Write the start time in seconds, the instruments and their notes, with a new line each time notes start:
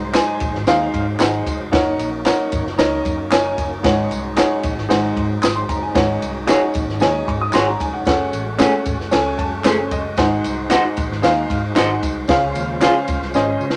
Already playing: fingered electric bass C2, upright piano G#2, tonewheel organ F#3 G#3 D#4 C5
0.13 upright piano D#4 G#4 C5 G#5, snare, clap, ride, tambourine
0.40 fingered electric bass A#1, kick, ride, tambourine
0.54 fingered electric bass G#1, snare
0.67 fingered electric bass D#2, upright piano D#4 G#4 C5 F5, snare, ride, tambourine
0.94 fingered electric bass G#2, kick, ride, tambourine
1.19 fingered electric bass G#1, upright piano D#4 G#4 C5 F#5, snare, clap, ride, tambourine
1.47 fingered electric bass F1, kick, ride, tambourine
1.72 fingered electric bass F#1, tonewheel organ A#3 C#4 D#4, upright piano D#4 A#4 C#5 F#5, kick, snare, ride
1.98 fingered electric bass A#1, ride, tambourine
2.25 upright piano D#4 A#4 C#5 F#5, snare, clap, ride, tambourine
2.52 fingered electric bass G#1, kick, ride, tambourine
2.67 snare
2.78 fingered electric bass C#2, upright piano D#4 A#4 C#5 D#5, snare, ride, tambourine
3.05 fingered electric bass F#2, kick, ride, tambourine
3.31 fingered electric bass F#1, upright piano D#4 A#4 C#5 G#5, snare, clap, ride, tambourine
3.58 fingered electric bass F#1, kick, ride, tambourine
3.83 fingered electric bass G#1, upright piano G#2 D#4 G#4 C#5 F#5, tonewheel organ G#3, kick, snare, ride
4.10 fingered electric bass C2, ride, tambourine
4.36 upright piano D#4 G#4 C#5 F#5, snare, clap, ride, tambourine
4.63 fingered electric bass A#1, kick, ride, tambourine
4.77 fingered electric bass G#1, snare
4.89 fingered electric bass G#1, upright piano G#2 D#4 G#4 C5 F#5, tonewheel organ C4 D#4, snare, ride, tambourine
5.17 fingered electric bass G#2, kick, ride
5.43 fingered electric bass G#1, upright piano D#6, snare, clap, ride, tambourine
5.56 upright piano C6
5.69 fingered electric bass F#1, upright piano A#5, kick, ride, tambourine
5.83 upright piano G#5
5.95 fingered electric bass G#1, upright piano G#2 D#4 G#4 C#5 F#5, tonewheel organ F#3 C#4 D#4, kick, snare, ride, tambourine
6.22 fingered electric bass C2, ride, tambourine
6.47 upright piano D#4 G#4 C#5 F#5, clean electric guitar F#4 G#4 C#5, snare, clap, ride, tambourine
6.74 fingered electric bass A#1, kick, ride, tambourine
6.87 fingered electric bass G#1, snare
7.00 fingered electric bass D#2, upright piano D#4 G#4 C#5 G#5, snare, ride, tambourine
7.28 fingered electric bass G#2, upright piano C#6, kick, ride
7.42 upright piano D#6
7.53 fingered electric bass G#1, clean electric guitar F#4 G#4 C#5, upright piano C6, snare, clap, ride, tambourine
7.67 upright piano A#5
7.80 fingered electric bass F1, upright piano G#5, kick, ride, tambourine
7.93 upright piano F#5
8.05 fingered electric bass F#1, tonewheel organ A3 F#4, upright piano C#4 G#4 A4 F#5, kick, snare, ride, tambourine
8.33 fingered electric bass A1, ride, tambourine
8.58 clean electric guitar A3 C#4 G#4, upright piano C#4 G#4 A4 F#5, snare, clap, ride, tambourine
8.85 fingered electric bass G#1, kick, ride, tambourine
8.99 fingered electric bass F#1, snare
9.11 fingered electric bass C#2, upright piano C#4 G#4 A4 G#5, snare, ride, tambourine
9.38 fingered electric bass F#2, upright piano A5, kick, ride, tambourine
9.64 fingered electric bass F#1, clean electric guitar A3 C#4 G#4, upright piano C#4 G#4 A4 C5 G#5, snare, clap, ride, tambourine
9.91 fingered electric bass F#1, upright piano D#5, kick, ride, tambourine
10.17 fingered electric bass G#1, upright piano G#2 D#4 G#4 C5 F#5, tonewheel organ D#4 C5, kick, snare, ride, tambourine
10.44 fingered electric bass C2, ride, tambourine
10.70 clean electric guitar D#4 F#4 C5, upright piano D#4 G#4 C5 F#5, snare, clap, ride, tambourine
10.97 fingered electric bass A#1, kick, ride, tambourine
11.10 fingered electric bass G#1, snare
11.22 fingered electric bass D#2, upright piano D#4 G#4 C5 F5, snare, ride, tambourine
11.50 fingered electric bass G#2, kick, ride, tambourine
11.75 fingered electric bass G#1, upright piano D#4 G#4 C5 F#5, clean electric guitar D#4 F#4 C5, snare, clap, ride, tambourine
12.02 fingered electric bass C2, kick, ride, tambourine
12.27 fingered electric bass C#2, upright piano C#3 C#4 G#4 C5 F5, tonewheel organ G#3 C#4 F4, kick, snare, ride, tambourine
12.55 fingered electric bass D#2, ride, tambourine
12.81 upright piano C#4 G#4 C5 F5, clean electric guitar F4 G#4 C5, snare, clap, ride, tambourine
13.08 fingered electric bass C#2, kick, ride, tambourine
13.21 fingered electric bass C2, snare
13.34 fingered electric bass G#1, upright piano C#4 G#4 C5 D#5, snare, tambourine
13.61 fingered electric bass C#3, tambourine
13.70 snare